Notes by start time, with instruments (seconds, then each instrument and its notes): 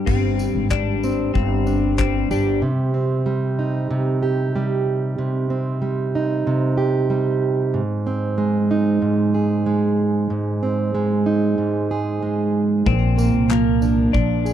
Already playing: steel-string acoustic guitar G3 D4 G4
0.06 upright bass G1, steel-string acoustic guitar G2, clean electric guitar C4, kick, crash
0.39 tambourine
0.55 upright bass G#1
0.71 steel-string acoustic guitar G3, clean electric guitar D4, kick, clap
1.03 steel-string acoustic guitar C4, tambourine
1.34 upright bass G1, steel-string acoustic guitar G2, clean electric guitar C4, kick
1.67 steel-string acoustic guitar D4, tambourine
1.98 steel-string acoustic guitar G3, clean electric guitar C4, kick, clap
2.31 upright bass G1, clean electric guitar D4, steel-string acoustic guitar G4, tambourine
2.62 steel-string acoustic guitar C3
2.94 steel-string acoustic guitar C4
3.26 steel-string acoustic guitar G3
3.59 steel-string acoustic guitar D#4
3.91 steel-string acoustic guitar C3
4.23 steel-string acoustic guitar G4
4.56 steel-string acoustic guitar G3
5.19 steel-string acoustic guitar C3
5.50 steel-string acoustic guitar C4
5.82 steel-string acoustic guitar G3
6.15 steel-string acoustic guitar D#4
6.47 steel-string acoustic guitar C3
6.77 steel-string acoustic guitar G4
7.10 steel-string acoustic guitar G3
7.74 steel-string acoustic guitar G#2
8.07 steel-string acoustic guitar C4
8.38 steel-string acoustic guitar G#3
8.71 steel-string acoustic guitar D#4
9.02 steel-string acoustic guitar G#2
9.34 steel-string acoustic guitar G#4
9.66 steel-string acoustic guitar G#3
10.30 steel-string acoustic guitar G#2
10.63 steel-string acoustic guitar C4
10.95 steel-string acoustic guitar G#3
11.26 steel-string acoustic guitar D#4
11.58 steel-string acoustic guitar G#2
11.91 steel-string acoustic guitar G#4
12.23 steel-string acoustic guitar G#3
12.86 upright bass A#1, steel-string acoustic guitar A#2, clean electric guitar C4, kick
13.18 steel-string acoustic guitar A#3, tambourine
13.34 upright bass C2
13.50 steel-string acoustic guitar F3, clean electric guitar A#3, clap
13.82 steel-string acoustic guitar D4, tambourine
14.13 upright bass A#1, steel-string acoustic guitar A#2, clean electric guitar D4, kick
14.45 steel-string acoustic guitar G#4, tambourine